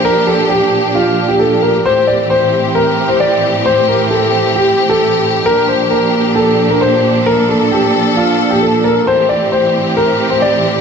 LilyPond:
<<
  \new Staff \with { instrumentName = "Grand piano" } { \time 4/4 \key a \phrygian \tempo 4 = 133 bes'8 a'8 g'4 f'8. g'16 a'8 bes'8 | c''8 d''8 c''4 bes'8. c''16 d''4 | c''8 bes'8 a'4 g'8. a'4~ a'16 | bes'8 c''8 bes'4 a'8. bes'16 c''4 |
bes'8 a'8 g'4 f'8. g'16 a'8 bes'8 | c''8 d''8 c''4 bes'8. c''16 d''4 | }
  \new Staff \with { instrumentName = "String section" } { \clef bass \time 4/4 \key a \phrygian << { g'1 | g'1~ | g'1~ | g'1 |
a'1 | g'1 | } \\ { <bes, f d'>1 | <a, e c'>1~ | <a, e c'>1 | <bes, f d'>1~ |
<bes, f d'>1 | <a, e c'>1 | } >> }
>>